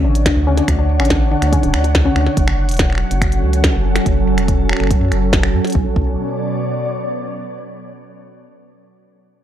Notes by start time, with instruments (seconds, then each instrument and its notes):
Already playing: ambient pad D3 D4 C#5 F#5
0.05 analog synth bass A1, synth pluck D4
0.15 closed hi-hat
0.26 synth pluck D4, finger snap, kick, snare, closed hi-hat
0.36 analog synth bass D2
0.47 synth pluck C#4
0.57 synth pluck D4, snare, closed hi-hat
0.68 analog synth bass D2, finger snap, kick, closed hi-hat
0.79 synth pluck D4
1.00 analog synth bass A1, synth pluck C#4, finger snap
1.05 closed hi-hat
1.10 synth pluck D4, kick, snare, closed hi-hat
1.31 synth pluck D4
1.42 analog synth bass D2, finger snap, closed hi-hat
1.52 synth pluck C#4, kick, closed hi-hat
1.63 analog synth bass D1, synth pluck D4, closed hi-hat
1.74 analog synth bass D2, finger snap
1.84 synth pluck D4, closed hi-hat
1.95 kick, snare, closed hi-hat
2.05 synth pluck C#4
2.16 analog synth bass D2, synth pluck D4, finger snap
2.27 snare
2.37 analog synth bass F#1, ambient pad F#3, kick, closed hi-hat
2.43 ambient pad C#4
2.48 finger snap
2.69 analog synth bass E1, closed hi-hat
2.71 closed hi-hat
2.74 closed hi-hat
2.77 kick, snare, closed hi-hat
2.79 ambient pad A4, closed hi-hat
2.90 finger snap
2.93 finger snap
2.95 finger snap
2.98 finger snap
3.11 analog synth bass F#1, closed hi-hat
3.21 finger snap, kick, closed hi-hat
3.32 closed hi-hat
3.43 analog synth bass C#2
3.53 closed hi-hat
3.64 finger snap, kick, snare, closed hi-hat
3.74 analog synth bass F#1
3.96 finger snap, snare, closed hi-hat
4.06 analog synth bass F#1, kick, closed hi-hat
4.38 analog synth bass E1, finger snap, closed hi-hat
4.48 kick, closed hi-hat
4.69 finger snap
4.73 finger snap
4.77 analog synth bass F#1, finger snap
4.80 finger snap
4.84 finger snap
4.87 finger snap, kick, closed hi-hat
5.01 analog synth bass F#2
5.12 analog synth bass F#1, finger snap, closed hi-hat
5.33 analog synth bass F#1, kick, snare, closed hi-hat
5.43 finger snap
5.54 analog synth bass F#2
5.65 snare, closed hi-hat
5.67 closed hi-hat
5.70 closed hi-hat
5.72 analog synth bass B1, ambient pad B2, kick, closed hi-hat
5.82 ambient pad B3
5.88 ambient pad C#5
5.95 analog synth bass B1, ambient pad D5, kick